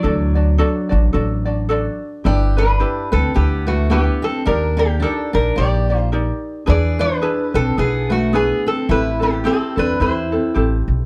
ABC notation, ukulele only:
X:1
M:4/4
L:1/8
Q:"Swing" 1/4=108
K:D
V:1 name="Ukulele"
[DFAd] [DFd] [DFAd] [DFd] [DFAd] [DFd] [DFAd]2 | [K:G] [DEGB] [DEB] [DEGB] [DEB] [DEGB] [DEB] [DEGB]2 | [_EG_Bd] [EGd] [EGBd] [EGd] [EGBd] [EGd] [EGBd]2 | [DE^GB] [DEB] [DEGB] [DEB] [DEGB] [DEB] [DEGB]2 |
[CEGA] [CEA] [CEGA] [CEA] [CEGA] [CEA] [CEGA]2 |]